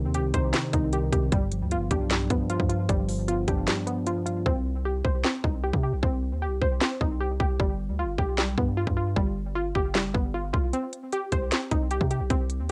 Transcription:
Already playing: C3 D#3 C4 D#4 G4
0.05 D#2
0.14 C4 G4, closed hi-hat
0.19 C2
0.34 C2 D#4 C5, kick, closed hi-hat
0.54 C3 C4, snare, clap, closed hi-hat
0.73 C2 D#3 D#4, kick, closed hi-hat
0.93 D#3 G4, closed hi-hat
1.12 C2 C3 G4, kick, closed hi-hat
1.32 G1 G2 G3, kick, closed hi-hat
1.52 F3, closed hi-hat
1.62 D2
1.71 B3 F4, closed hi-hat
1.76 G1
1.91 B1 D4 G4, kick, closed hi-hat
2.11 G2 G3, snare, clap, closed hi-hat
2.30 G2 F3 B3, kick, closed hi-hat
2.50 F3 F4, closed hi-hat
2.60 G2, kick
2.69 G2 F4, closed hi-hat
2.89 G1 G2 G3, kick, closed hi-hat
3.08 F3, open hi-hat
3.28 B3 F4, closed hi-hat
3.48 G1 D4 G4, kick, closed hi-hat
3.67 G2 G3, snare, clap, closed hi-hat
3.87 F3 B3, closed hi-hat
4.06 F3 F4, closed hi-hat
4.26 G2 F4, closed hi-hat
4.46 C2 C4, kick
4.85 G4
5.05 C2 C5, kick
5.24 C4, snare, clap
5.44 C2 D#4, kick
5.64 G4
5.73 C3, kick
5.83 G4
5.93 B1
6.03 C2 C4, kick
6.32 D#2
6.42 G4
6.47 C2
6.61 C2 C5, kick
6.81 C4, snare, clap
7.01 C2 D#4, kick
7.20 G4
7.40 C2 G4, kick
7.60 G1 G3, kick
7.89 D2
7.99 F4
8.04 G1
8.18 B1 G4, kick
8.38 G3, snare, clap
8.58 G2 B3, kick
8.77 F4
8.87 G2, kick
8.97 F4
9.16 G1 G3, kick
9.55 F4
9.75 G1 G4, kick
9.95 F1 G3, snare, clap
10.05 G1
10.14 G1 B3, kick
10.34 F4
10.53 C2 F4, kick
10.73 C4, closed hi-hat
10.93 closed hi-hat
11.12 G4, closed hi-hat
11.32 C2 C5, kick, closed hi-hat
11.52 C4, snare, clap, closed hi-hat
11.71 C2 D#4, kick, closed hi-hat
11.91 G4, closed hi-hat
12.01 C3, kick
12.11 G4, closed hi-hat
12.20 B1
12.30 C2 C4, kick, closed hi-hat
12.50 closed hi-hat
12.60 D#2

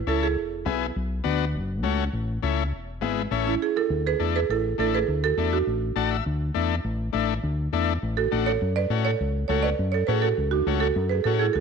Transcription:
0.07 C#2 C#4 E4 A4
0.23 E4 G#4
0.37 E1
0.65 B1 B3 E4 G#4
0.96 B1
1.24 D2 B3 D4 F#4
1.54 F#1
1.83 C#2 A3 C#4 F#4
2.13 A1
2.42 C#2 A3 C#4 E4
2.73 E1
3.01 G#1 G#3 B3 E4
3.31 A1 A3 C#4 E4
3.47 C#4 E4
3.62 E4 G#4
3.76 E4 A4
3.90 D2
4.06 G#4 B4
4.19 E2 A3 D4 E4
4.36 G#4 B4
4.49 A1 E4 A4
4.78 A1 A3 D4 E4 A4
4.95 G#4 B4
5.08 D2
5.24 F#4 A4
5.37 E2 A3 D4 E4
5.53 D4 F#4
5.67 A1
5.96 A1 A3 D4 F#4 A5
6.10 E5
6.26 D2
6.54 E2 A3 D4 E4
6.84 A1
7.13 A1 A3 D4 E4
7.43 D2
7.73 E2 A3 D4 E4
8.03 A1
8.17 F#4 A4
8.31 A1 A3 D4 F#4
8.46 A4 C#5
8.62 F#2
8.76 B4 D5
8.90 A2 A3 C#4 F#4
9.05 A4 C#5
9.20 C#2
9.48 C#2 A3 C#4 F#4 A4 C#5
9.63 B4 D5
9.79 F#2
9.92 A4 C#5
10.07 A2 A3 C#4 F#4 G#4 B4
10.22 F#4 A4
10.38 C#2
10.51 D4 F#4
10.66 C#2 A3 C#4 F#4
10.80 F#4 A4
10.96 F#2
11.09 G#4 B4
11.24 A2 A3 C#4 F#4 A4
11.39 E4 G#4
11.53 C#2 F#4 A4

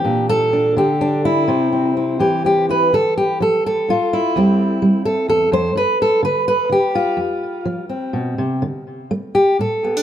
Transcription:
Already playing: G4
0.04 A#2 D4
0.29 A4
0.53 D4
0.77 D3 G4
1.01 D4
1.25 E4
1.48 C3 C4
1.72 C4
1.97 C4
2.19 E3 G4
2.45 C4 G4
2.69 E4 B4
2.93 D3 A4
3.17 G4
3.40 F3 A4
3.66 A4
3.88 A2 F4
4.13 E4
4.36 E2 G3 C4
4.82 G3
5.05 A4
5.28 E2 A4
5.52 F2 C5
5.75 G2 B4
6.02 A4
6.23 D3 B4
6.48 B4
6.69 D3 G4
6.95 F4
7.17 F2
7.65 F3
7.89 C4
8.13 B2
8.38 C3
8.62 D3
9.11 A3
9.35 G4
9.59 A2 A4
9.84 B3
9.97 D4

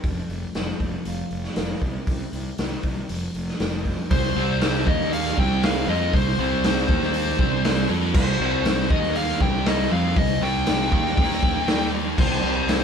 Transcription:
0.04 F1 F2, kick, open hi-hat
0.29 F1 A3, open hi-hat
0.55 F1 F3, snare, open hi-hat
0.80 F1 C4, kick, open hi-hat
1.05 F1 F4, open hi-hat
1.31 F1 A3, open hi-hat
1.44 snare
1.56 F1 F4, snare, open hi-hat
1.81 C2 C3, kick, open hi-hat
2.07 C2 C3, kick, open hi-hat
2.33 C2 G3, open hi-hat
2.58 C2 D#3, snare, open hi-hat
2.83 C2 C4, kick, open hi-hat
3.09 F1 F2, open hi-hat
3.34 F1 A3, open hi-hat
3.48 snare
3.60 F1 F4, snare, open hi-hat
3.85 C4, kick, open hi-hat
4.11 C2 C3 G3 C5, kick, open hi-hat
4.36 C2 C3 G3 C4
4.61 snare, open hi-hat
4.87 D#2 D#3 A#3 D#4 D#5, kick
5.01 snare
5.13 F5, open hi-hat
5.26 snare
5.37 C2 C3 G3 C4 G5, kick
5.63 F5, snare, open hi-hat
5.88 F2 F3 C4 F4 D#5
6.13 C2 C3 G3 C5, kick, open hi-hat
6.39 C2 C3 G3 C4 C5
6.64 snare, open hi-hat
6.89 D#2 D#3 A#3 D#4, kick
7.02 snare
7.14 open hi-hat
7.39 C2 C3 G3 C4, kick
7.64 snare, open hi-hat
7.88 F2 F3 C4 F4
8.14 C2 C3 G3 C5, kick, crash
8.39 C2 C3 G3 C4
8.65 snare, open hi-hat
8.90 D#2 D#3 A#3 D#4 D#5, kick
9.03 snare
9.15 F5, open hi-hat
9.29 snare
9.40 C2 C3 G3 C4 G5, kick
9.66 D#5, snare, open hi-hat
9.91 F2 F3 C4 F4 F5
10.16 C2 C3 G3 D#5, kick, open hi-hat
10.41 C2 C3 G3 C4 G5
10.66 snare, open hi-hat
10.91 D#2 D#3 A#3 D#4, kick
11.06 snare
11.17 D#2 D#3 A#3 D#4, kick, open hi-hat
11.31 snare
11.43 kick
11.68 snare, open hi-hat
12.18 C2 C3 G3 C5, kick, crash
12.43 C2 C3 G3 C4
12.69 snare, open hi-hat

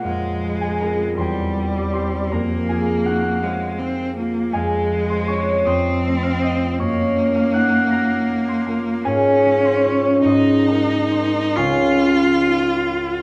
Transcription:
Already playing: F#5 F6
0.04 F2 G#3 F4 F5
0.09 C5
0.43 G#3
0.61 G#4 G#5
0.80 C4 F4 A#4 A#5
1.17 E2 G3 C5 G5 C6
1.56 G3
1.75 D5 D6
1.93 C4 G4 C5 C6
2.32 F2 A#3 A#4 A#5
2.69 F4 G#4 G#5
3.06 D#4 F#4 F#5
3.42 G#3 F4 C5 F5
3.79 G#3 C4
4.16 A#3 F4
4.53 F2 G#3 G#4 F5 G#5
4.91 G#3
5.10 C5 C6
5.28 C4 F4 C#5 C#6
5.65 F2 C4 D#5 C6 D#6
6.06 A3
6.23 F5 F6
6.42 C4 F4 D#5 D#6
6.78 F#2 A#3 C#5 A#5 C#6
7.18 F4
7.35 F5 F6
7.54 D#4 F#5 F#6
7.90 F4 A#5 F#6 A#6
8.31 A#3
8.48 C6 C7
8.67 F4 A#4 A#5
9.05 G#2 C#4 G#4 F5 G#5
9.46 G#3
9.65 C5 C6
9.85 C#4 F4 C#5 C#6
10.24 G#2 D#4 D#5 D#6
10.29 C6
10.68 G#3 A#4 A#5
11.12 C4 D#4 C5 C6
11.56 C#2 F4 C#5 G#5 C#6
12.02 F4
12.47 D#4
12.91 F4

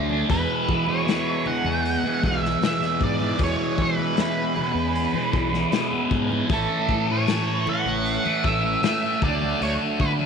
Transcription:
Already playing: D2 F#3 A3 D4 A4
0.10 A3 D4, high conga
0.29 E2 B2 E3 G#3 B3 G#4 B4, kick, open hi-hat
0.69 E3, kick
0.87 B2 E3 C#5, high conga
1.06 E2 B2 E3, snare, open hi-hat
1.45 E2 B2 E3 F#5, low conga
1.64 E2, muted distorted electric guitar stroke, low conga
1.85 open hi-hat
2.03 B2 E3, high conga
2.22 B1 E2 B2 E3 E5, kick
2.42 muted distorted electric guitar stroke, snare
2.60 E2 B2 E3, snare, open hi-hat, high conga
2.65 E5
2.79 B2 E3, snare
3.01 G#2 D5, kick, high conga
3.18 B2 E3, high conga
3.36 E2 B2 E3 C#4, kick, open hi-hat
3.44 C#5
3.77 E3, kick
3.82 B4
3.97 B2 E3, high conga
4.14 E2 B2 E3, snare, open hi-hat
4.22 B4
4.55 E2 B2 E3, low conga
4.74 E2, muted distorted electric guitar stroke
4.95 open hi-hat
5.12 B2 E3, high conga
5.32 B1 E2 B2 E3, kick
5.51 muted distorted electric guitar stroke, snare
5.72 E2 B2 E3, snare, open hi-hat, high conga
5.90 B2 E3
6.11 G#2, kick, high conga, low conga
6.29 B2 E3, high conga
6.48 A1 A2 E3 A3 A4, kick, open hi-hat
6.53 A4
6.88 A2, kick
7.07 E3 A3
7.12 C#5
7.27 A2 E3 A3, snare, open hi-hat
7.65 A2 E3 A3 F#5, low conga
7.85 A1, muted distorted electric guitar stroke, low conga
8.06 open hi-hat
8.23 E3 A3, high conga
8.44 A1 A2 E3 A3 E5, kick
8.63 muted distorted electric guitar stroke
8.82 A2 E3 A3 E5, snare, open hi-hat, high conga
9.02 E3 A3
9.21 D2 D3 F#3 A3 D4 D5, kick, high conga, low conga
9.41 A3 D4, high conga
9.60 D2 D3 A3 D4 C#5, open hi-hat
10.00 D3 B4, kick
10.19 A3 D4, high conga

